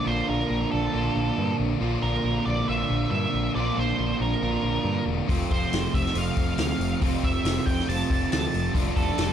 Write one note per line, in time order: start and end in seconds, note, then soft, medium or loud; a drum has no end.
0.05 0.21 A#1 medium
0.05 0.92 A#2 medium
0.05 0.92 D3 medium
0.05 0.94 A#3 medium
0.05 0.94 D4 medium
0.05 0.95 F4 medium
0.05 0.27 C5 medium
0.29 0.43 A#1 medium
0.29 0.71 A#4 medium
0.50 0.64 A#1 medium
0.71 0.87 A#1 medium
0.71 1.55 A4 medium
0.93 1.08 A#1 medium
0.93 1.80 A#2 medium
0.93 1.79 D3 medium
0.93 1.82 A#3 medium
0.93 1.82 D4 medium
0.93 1.82 F4 medium
1.16 1.30 A#1 medium
1.38 1.52 G2 medium
1.60 1.74 A#1 medium
1.80 1.95 A#1 medium
1.80 2.67 A#2 medium
1.80 2.66 D3 medium
1.80 2.69 A#3 medium
1.80 2.70 D4 medium
1.80 2.70 F4 loud
2.03 2.17 A#1 medium
2.03 2.43 A#4 medium
2.24 2.38 A#1 medium
2.45 2.61 A#1 medium
2.45 2.66 D5 medium
2.68 2.82 A#1 medium
2.68 3.53 A#2 medium
2.68 3.54 D3 medium
2.68 3.54 A#3 medium
2.68 3.54 D4 medium
2.68 3.58 F4 medium
2.68 3.10 E5 medium
2.90 3.04 A#1 medium
3.11 3.25 G2 medium
3.11 3.51 E5 medium
3.34 3.48 A#1 medium
3.55 3.70 A#1 medium
3.55 4.40 A#2 medium
3.55 4.41 D3 medium
3.55 4.41 A#3 medium
3.55 4.42 D4 loud
3.55 4.43 F4 loud
3.55 3.77 D5 medium
3.77 3.91 A#1 medium
3.77 4.21 C5 medium
3.99 4.13 A#1 medium
4.20 4.34 A#1 medium
4.20 5.03 A#4 medium
4.41 4.56 A#1 medium
4.41 5.27 A#2 medium
4.41 5.27 D3 medium
4.41 5.28 A#3 medium
4.41 5.28 D4 medium
4.41 5.29 F4 medium
4.63 4.77 A#1 medium
4.84 4.99 G2 medium
5.06 5.20 E1 medium
5.27 5.43 F1 medium
5.27 6.14 F2 medium
5.27 6.14 C3 medium
5.27 6.15 F3 medium
5.27 6.15 A3 medium
5.27 6.16 C4 loud
5.27 6.16 F4 medium
5.27 kick loud
5.27 open hi-hat medium
5.51 5.65 F1 medium
5.51 5.96 C5 medium
5.51 kick medium
5.51 open hi-hat soft
5.72 5.86 F1 medium
5.72 snare loud
5.72 open hi-hat medium
5.94 6.08 F1 medium
5.94 6.16 E5 medium
5.94 kick medium
5.94 open hi-hat medium
6.06 snare soft
6.14 6.29 F1 medium
6.14 7.01 F2 medium
6.14 7.00 C3 medium
6.14 7.02 F3 medium
6.14 7.03 A3 medium
6.14 7.03 C4 medium
6.14 7.04 F4 medium
6.14 6.57 F5 loud
6.14 open hi-hat medium
6.37 6.51 F1 medium
6.37 kick medium
6.37 open hi-hat medium
6.58 6.72 D2 medium
6.58 6.99 F5 medium
6.58 snare loud
6.58 open hi-hat medium
6.79 6.93 F1 medium
6.79 open hi-hat medium
7.01 7.16 F1 medium
7.01 7.87 F2 medium
7.01 7.87 C3 medium
7.01 7.88 F3 medium
7.01 7.88 A3 medium
7.01 7.89 C4 medium
7.01 7.89 F4 medium
7.01 kick loud
7.01 open hi-hat medium
7.23 7.38 F1 medium
7.23 7.69 E5 medium
7.23 kick medium
7.23 open hi-hat soft
7.43 7.58 F1 medium
7.43 snare loud
7.43 open hi-hat medium
7.66 7.81 F1 medium
7.66 7.88 G5 medium
7.66 kick medium
7.66 open hi-hat medium
7.80 snare soft
7.87 8.02 F1 medium
7.87 9.33 F2 medium
7.87 8.74 C3 medium
7.87 8.74 F3 medium
7.87 8.74 A3 medium
7.87 8.75 C4 medium
7.87 8.76 F4 medium
7.87 8.29 A5 loud
7.87 open hi-hat medium
8.10 8.24 F1 medium
8.10 kick medium
8.10 open hi-hat medium
8.32 8.47 D2 medium
8.32 8.72 A5 medium
8.32 snare loud
8.32 open hi-hat medium
8.54 8.68 F1 medium
8.54 open hi-hat medium
8.74 8.89 F1 medium
8.74 9.33 F3 medium
8.74 9.33 A3 medium
8.74 9.33 D4 medium
8.74 9.33 F4 loud
8.74 kick loud
8.74 open hi-hat medium
8.96 9.11 F1 medium
8.96 9.33 A4 medium
8.96 kick medium
8.96 open hi-hat medium
9.18 9.32 F1 medium
9.18 snare loud
9.18 open hi-hat medium